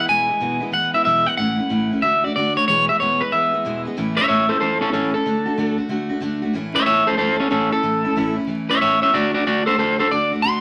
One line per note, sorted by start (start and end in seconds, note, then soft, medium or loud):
0.08 0.29 E2 medium
0.08 0.29 B2 medium
0.08 0.30 E3 medium
0.08 0.29 G#3 medium
0.08 0.28 B3 medium
0.08 0.27 E4 medium
0.08 0.70 G#5 loud
0.28 0.39 E3 soft
0.28 0.40 G#3 medium
0.28 0.40 B3 medium
0.28 0.41 E4 medium
0.40 0.61 E2 medium
0.40 0.62 B2 medium
0.40 0.62 E3 medium
0.40 0.61 G#3 medium
0.40 0.60 B3 medium
0.40 0.59 E4 medium
0.60 0.70 E3 soft
0.60 0.71 G#3 medium
0.60 0.73 B3 medium
0.60 0.73 E4 medium
0.71 0.93 E3 medium
0.71 0.94 G#3 medium
0.71 0.93 B3 medium
0.71 0.92 E4 medium
0.71 0.94 F#5 loud
0.93 1.05 E3 soft
0.93 1.05 G#3 soft
0.93 1.06 B3 medium
0.93 1.05 E4 medium
0.93 1.04 E5 medium
1.05 1.26 E2 medium
1.05 1.27 B2 medium
1.05 1.27 E3 medium
1.05 1.26 G#3 medium
1.05 1.25 B3 medium
1.05 1.24 E4 medium
1.05 1.26 E5 loud
1.25 1.38 E3 soft
1.25 1.38 B3 soft
1.25 1.38 E4 medium
1.25 1.36 F#5 loud
1.37 1.59 A2 medium
1.37 1.59 E3 medium
1.37 1.59 A3 medium
1.37 1.58 C#4 medium
1.37 1.57 E4 medium
1.37 2.02 F#5 loud
1.58 1.69 A3 soft
1.58 1.69 C#4 medium
1.58 1.70 E4 medium
1.69 1.91 A2 medium
1.69 1.91 E3 medium
1.69 1.91 A3 medium
1.69 1.91 C#4 medium
1.69 1.90 E4 medium
1.91 2.02 A3 medium
1.91 2.03 C#4 medium
1.91 2.03 E4 medium
2.02 2.23 D3 medium
2.02 2.24 A3 medium
2.02 2.24 D4 medium
2.02 2.22 F#4 medium
2.02 2.24 E5 loud
2.24 2.35 A3 soft
2.24 2.36 D4 soft
2.24 2.35 F#4 medium
2.24 2.34 D5 medium
2.36 2.56 D3 medium
2.36 2.57 A3 medium
2.36 2.56 D4 medium
2.36 2.55 F#4 medium
2.36 2.55 D5 medium
2.56 2.69 A3 soft
2.56 2.68 D4 medium
2.56 2.67 F#4 medium
2.56 2.67 C#5 medium
2.68 2.88 E2 medium
2.68 2.89 B2 medium
2.68 2.89 E3 medium
2.68 2.89 G#3 loud
2.68 2.88 B3 medium
2.68 2.87 G#4 medium
2.68 2.89 C#5 loud
2.88 3.00 G#3 soft
2.88 3.00 B3 medium
2.88 3.00 G#4 medium
2.88 2.99 E5 medium
3.00 3.21 E2 medium
3.00 3.21 B2 medium
3.00 3.21 E3 medium
3.00 3.21 G#3 medium
3.00 3.20 B3 medium
3.00 3.19 G#4 medium
3.00 3.21 C#5 medium
3.21 3.31 E3 soft
3.21 3.32 G#3 soft
3.21 3.33 B3 soft
3.21 3.32 G#4 soft
3.21 3.31 B4 medium
3.32 3.53 E3 medium
3.32 3.54 G#3 medium
3.32 3.53 B3 medium
3.32 3.52 G#4 medium
3.32 3.82 E5 medium
3.53 3.64 E3 soft
3.53 3.64 G#3 soft
3.53 3.65 B3 medium
3.53 3.64 G#4 medium
3.65 3.85 E2 medium
3.65 3.86 B2 medium
3.65 3.86 E3 medium
3.65 3.86 G#3 medium
3.65 3.85 B3 medium
3.65 3.84 G#4 medium
3.85 3.96 E3 medium
3.85 3.97 G#3 medium
3.85 3.97 B3 medium
3.85 3.97 G#4 medium
3.97 4.17 A2 medium
3.97 4.18 E3 loud
3.97 4.18 A3 medium
3.97 4.18 C#4 loud
3.97 4.17 E4 loud
4.17 4.28 A3 medium
4.17 4.29 C#4 medium
4.17 4.29 E4 medium
4.17 4.27 C#5 medium
4.17 4.27 E5 loud
4.28 4.50 A2 medium
4.28 4.50 E3 medium
4.28 4.50 A3 medium
4.28 4.50 C#4 medium
4.28 4.48 E4 medium
4.28 4.48 C#5 medium
4.28 4.49 E5 medium
4.49 4.61 A3 soft
4.49 4.61 C#4 medium
4.49 4.61 E4 medium
4.49 4.59 A4 medium
4.49 4.60 C5 medium
4.60 4.82 E3 medium
4.60 4.82 A3 medium
4.60 4.81 C#4 medium
4.60 4.80 E4 medium
4.60 4.80 A4 medium
4.60 4.81 C5 medium
4.81 4.93 A3 soft
4.81 4.91 C#4 medium
4.81 4.93 C#4 soft
4.81 4.93 E4 medium
4.81 4.92 A4 loud
4.93 5.14 A2 medium
4.93 5.14 E3 medium
4.93 5.15 A3 medium
4.93 5.12 C#4 medium
4.93 5.15 C#4 medium
4.93 5.13 E4 medium
4.93 5.13 A4 medium
5.14 5.25 A3 soft
5.14 5.26 C#4 soft
5.14 5.26 E4 medium
5.14 5.77 A4 medium
5.26 5.47 D3 medium
5.26 5.47 A3 medium
5.26 5.46 D4 medium
5.26 5.44 F#4 medium
5.46 5.56 A3 soft
5.46 5.57 D4 medium
5.46 5.58 F#4 medium
5.57 5.79 D3 medium
5.57 5.79 A3 medium
5.57 5.78 D4 medium
5.57 5.76 F#4 loud
5.78 5.88 A3 soft
5.78 5.89 D4 medium
5.78 5.89 F#4 medium
5.88 6.10 D3 medium
5.88 6.10 A3 medium
5.88 6.09 D4 medium
5.88 6.08 F#4 medium
6.09 6.20 A3 soft
6.09 6.21 D4 medium
6.09 6.22 F#4 medium
6.20 6.42 D3 medium
6.20 6.43 A3 medium
6.20 6.42 D4 loud
6.20 6.41 F#4 loud
6.42 6.54 A3 medium
6.42 6.55 D4 medium
6.42 6.54 F#4 medium
6.53 6.75 A2 medium
6.53 6.76 E3 medium
6.53 6.75 A3 loud
6.53 6.74 C#4 loud
6.53 6.73 E4 loud
6.74 6.84 A3 soft
6.74 6.85 C#4 soft
6.74 6.85 E4 medium
6.74 6.85 C#5 medium
6.74 6.85 E5 medium
6.85 7.07 A2 medium
6.85 7.07 E3 medium
6.85 7.07 A3 medium
6.85 7.06 C#4 medium
6.85 7.05 E4 medium
6.85 7.06 C#5 medium
6.85 7.07 E5 loud
7.06 7.17 A3 soft
7.06 7.18 C#4 soft
7.06 7.18 E4 medium
7.06 7.17 A4 medium
7.06 7.17 C5 medium
7.17 7.39 E3 medium
7.17 7.40 A3 medium
7.17 7.39 C#4 medium
7.17 7.38 E4 medium
7.17 7.38 A4 medium
7.17 7.40 C5 loud
7.39 7.49 A3 soft
7.39 7.50 C#4 medium
7.39 7.50 E4 medium
7.39 7.50 A4 medium
7.50 7.72 A2 medium
7.50 7.72 E3 medium
7.50 7.72 A3 medium
7.50 7.71 C#4 medium
7.50 7.70 E4 medium
7.50 7.71 A4 medium
7.71 7.82 A3 soft
7.71 7.83 C#4 medium
7.71 7.83 E4 medium
7.71 8.36 A4 medium
7.83 8.05 A2 medium
7.83 8.05 E3 medium
7.83 8.05 A3 medium
7.83 8.04 C#4 medium
7.83 8.03 E4 medium
8.04 8.15 A3 medium
8.04 8.16 C#4 medium
8.04 8.16 E4 medium
8.16 8.37 A2 medium
8.16 8.38 E3 medium
8.16 8.37 A3 medium
8.16 8.36 C#4 loud
8.16 8.34 E4 medium
8.36 8.47 A3 soft
8.36 8.48 C#4 medium
8.36 8.48 E4 medium
8.47 8.69 E3 medium
8.47 8.70 A3 medium
8.47 8.69 C#4 medium
8.47 8.67 E4 medium
8.69 8.81 A3 soft
8.69 8.82 C#4 soft
8.69 8.81 E4 medium
8.69 8.80 C#5 medium
8.69 8.81 E5 loud
8.81 9.02 A2 medium
8.81 9.03 E3 medium
8.81 9.02 A3 medium
8.81 9.02 C#4 medium
8.81 8.99 E4 medium
8.81 9.01 C#5 medium
8.81 9.02 E5 medium
9.00 9.13 A3 soft
9.00 9.14 C#4 soft
9.00 9.13 E4 medium
9.00 9.13 C#5 medium
9.00 9.14 E5 medium
9.14 9.35 D3 medium
9.14 9.35 A3 medium
9.14 9.36 D4 medium
9.14 9.33 F#4 medium
9.14 9.35 F#4 medium
9.14 9.33 D5 loud
9.34 9.47 D4 medium
9.34 9.45 F#4 medium
9.34 9.47 F#4 medium
9.34 9.46 D5 medium
9.38 9.46 A3 medium
9.47 9.67 D3 medium
9.47 9.68 A3 medium
9.47 9.67 D4 medium
9.47 9.66 F#4 medium
9.47 9.66 D5 medium
9.66 9.78 A3 soft
9.66 9.78 D4 soft
9.66 9.79 F#4 medium
9.66 9.77 A4 medium
9.66 9.78 C5 loud
9.77 9.99 D3 medium
9.77 10.00 A3 medium
9.77 9.98 D4 medium
9.77 9.97 F#4 medium
9.77 9.98 A4 medium
9.77 9.99 C5 medium
9.98 10.11 A3 soft
9.98 10.11 D4 medium
9.98 10.10 F#4 medium
9.98 10.10 A4 medium
9.98 10.11 C5 medium
10.11 10.32 D3 medium
10.11 10.32 A3 medium
10.11 10.32 D4 medium
10.11 10.31 F#4 loud
10.11 10.32 D5 loud
10.32 10.43 A3 medium
10.32 10.43 D4 soft
10.32 10.44 F#4 medium
10.42 10.61 D3 medium
10.42 10.61 A3 medium
10.42 10.61 D4 medium
10.42 10.61 F#4 loud
10.42 10.61 C6 loud